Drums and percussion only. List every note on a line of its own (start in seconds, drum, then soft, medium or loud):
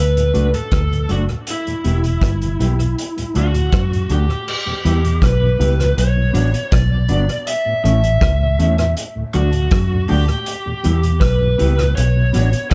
0.17 closed hi-hat medium
0.35 closed hi-hat medium
0.54 closed hi-hat medium
0.71 kick loud
0.71 cross-stick loud
0.71 closed hi-hat medium
0.93 closed hi-hat soft
1.09 closed hi-hat medium
1.29 closed hi-hat soft
1.47 closed hi-hat loud
1.67 closed hi-hat soft
1.84 closed hi-hat medium
2.04 closed hi-hat medium
2.22 kick loud
2.22 cross-stick loud
2.22 closed hi-hat medium
2.42 closed hi-hat medium
2.60 closed hi-hat medium
2.80 closed hi-hat medium
2.98 closed hi-hat medium
3.18 closed hi-hat medium
3.35 closed hi-hat medium
3.54 closed hi-hat medium
3.72 kick loud
3.72 cross-stick loud
3.72 closed hi-hat medium
3.93 closed hi-hat medium
4.09 closed hi-hat medium
4.30 closed hi-hat soft
4.48 crash loud
4.85 closed hi-hat medium
5.05 closed hi-hat medium
5.22 kick loud
5.22 cross-stick loud
5.22 closed hi-hat medium
5.61 closed hi-hat medium
5.80 cross-stick medium
5.80 closed hi-hat medium
5.98 closed hi-hat loud
6.35 closed hi-hat medium
6.54 closed hi-hat medium
6.72 kick loud
6.72 cross-stick loud
6.72 closed hi-hat loud
7.09 closed hi-hat medium
7.29 closed hi-hat soft
7.47 closed hi-hat loud
7.85 closed hi-hat medium
8.04 closed hi-hat medium
8.21 kick loud
8.21 cross-stick loud
8.21 closed hi-hat medium
8.60 closed hi-hat medium
8.78 cross-stick medium
8.78 closed hi-hat medium
8.97 closed hi-hat loud
9.33 closed hi-hat medium
9.53 closed hi-hat medium
9.71 kick loud
9.71 cross-stick loud
9.71 closed hi-hat loud
10.08 open hi-hat medium
10.28 closed hi-hat soft
10.46 closed hi-hat loud
10.84 closed hi-hat medium
11.03 closed hi-hat medium
11.21 kick loud
11.21 cross-stick loud
11.21 closed hi-hat loud
11.59 closed hi-hat medium
11.79 cross-stick medium
11.79 closed hi-hat medium
11.97 closed hi-hat loud
12.34 closed hi-hat medium
12.53 closed hi-hat medium
12.71 closed hi-hat loud